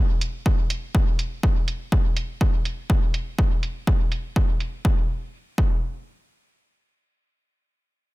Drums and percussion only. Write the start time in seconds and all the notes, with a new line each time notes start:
0.21 closed hi-hat
0.46 kick
0.70 closed hi-hat
0.95 kick
1.19 closed hi-hat
1.43 kick
1.68 closed hi-hat
1.92 kick
2.17 closed hi-hat
2.41 kick
2.65 closed hi-hat
2.90 kick
3.14 closed hi-hat
3.39 kick
3.63 closed hi-hat
3.87 kick
4.12 closed hi-hat
4.36 kick
4.60 closed hi-hat
4.85 kick
5.58 kick